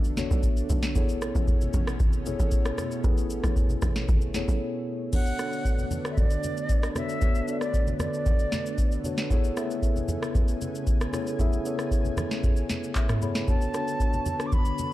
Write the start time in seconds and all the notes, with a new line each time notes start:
Already playing: A1 D3 A3 B3 D4 F#4 A4 B4 E5
0.04 shaker
0.17 B3 D4 F#4 A4 C#5, snare, high conga, shaker
0.31 B1, shaker
0.43 kick, shaker
0.57 shaker
0.69 B1, high conga, shaker
0.83 snare, shaker
0.95 A1 B2 A3 B3 C#4 E4 G#4 A4 C#5, kick, low conga, shaker
1.09 shaker
1.22 cross-stick, shaker
1.35 A1, high conga, shaker
1.48 kick, low conga, shaker
1.61 high conga, shaker
1.74 A1, high conga, low conga, shaker
1.87 cross-stick, shaker
2.00 G#1, kick, low conga, shaker
2.13 shaker
2.26 B3 E4 G#4 A4 C#5, high conga, shaker
2.40 G#1, shaker
2.51 kick, shaker
2.65 cross-stick, shaker
2.78 cross-stick, high conga, shaker
2.91 shaker
3.04 A1 B3 E4 G#4 A4 B4, kick, low conga, shaker
3.18 shaker
3.30 shaker
3.44 A1, cross-stick, high conga, shaker
3.56 kick, low conga, shaker
3.70 high conga, shaker
3.82 A1, cross-stick, high conga, low conga, shaker
3.96 snare, shaker
4.09 G#1, kick, low conga, shaker
4.21 shaker
4.34 B3 E4 G#4 A4 C#5, snare, high conga, shaker
4.48 A1, shaker
5.13 D3 A3 B3 D4 F#4 A4 C#5 F#5, kick, crash, low conga, shaker
5.26 shaker
5.39 B3 D4 F#4 A4 C#5, cross-stick, shaker
5.53 shaker
5.65 kick, shaker
5.79 high conga, shaker
5.91 high conga, low conga, shaker
6.05 cross-stick, shaker
6.11 E5
6.17 D5, kick, low conga, shaker
6.30 shaker
6.43 high conga, shaker
6.57 shaker
6.69 kick, shaker
6.83 cross-stick, shaker
6.95 B3 D4 F#4 A4 C#5 E5, cross-stick, high conga, shaker
7.09 shaker
7.22 B3 D4 F#4 A4 C#5, kick, low conga, shaker
7.35 shaker
7.48 B3 D4 F#4 A4 D5, shaker
7.61 D5, cross-stick, shaker
7.74 kick, shaker
7.87 high conga, shaker
8.00 D5, cross-stick, high conga, low conga, shaker
8.14 shaker
8.26 kick, low conga, shaker
8.39 shaker
8.52 snare, high conga, shaker
8.66 shaker
8.78 kick, shaker
8.92 shaker
9.04 B3 D4 F#4 A4 C#5, high conga, shaker
9.18 snare, shaker
9.30 C#3 B3 E4 G#4 A4 C#5 G#5, kick, low conga, shaker
9.44 shaker
9.56 B3 E4 G#4 A4 E5, cross-stick, shaker
9.71 shaker
9.82 kick, shaker
9.96 high conga, shaker
10.08 high conga, low conga, shaker
10.23 cross-stick, shaker
10.35 kick, low conga, shaker
10.48 shaker
10.62 high conga, shaker
10.75 shaker
10.87 kick, shaker
11.01 cross-stick, shaker
11.13 B3 E4 G#4 A4 C#5, cross-stick, high conga, shaker
11.27 shaker
11.39 B3 E4 G#4 A4 E5, kick, low conga, shaker
11.53 shaker
11.65 B3 E4 G#4 A4 C#5, shaker
11.79 cross-stick, shaker
11.91 kick, shaker
12.05 high conga, shaker
12.17 cross-stick, high conga, low conga, shaker
12.31 snare, shaker
12.43 kick, low conga, shaker
12.56 shaker
12.69 snare, high conga, shaker
12.84 shaker
12.95 E5, kick, clap, shaker
13.09 cross-stick, mid tom, shaker
13.22 B3 E4 G#4 A4 C#5 B5, high conga, shaker
13.35 snare, shaker
13.48 D3 B3 D4 F#4 A4 C#5 A5, kick, low conga, shaker
13.61 shaker
13.74 B3 D4 F#4 A4 C#5, cross-stick, shaker
13.88 shaker
14.00 kick, shaker
14.13 high conga, shaker
14.26 high conga, low conga, shaker
14.40 cross-stick, shaker
14.46 D6
14.52 B5, kick, low conga, shaker
14.65 shaker
14.78 high conga, shaker